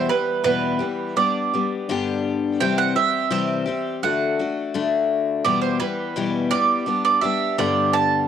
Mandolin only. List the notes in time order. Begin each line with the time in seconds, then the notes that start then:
0.09 B4
0.44 B4
1.17 D5
2.60 G5
2.78 F#5
2.96 E5
3.32 E5
4.03 F#5
5.45 D5
5.62 C5
5.80 B4
6.51 D5
7.05 D5
7.21 E5
7.59 D5
7.93 A5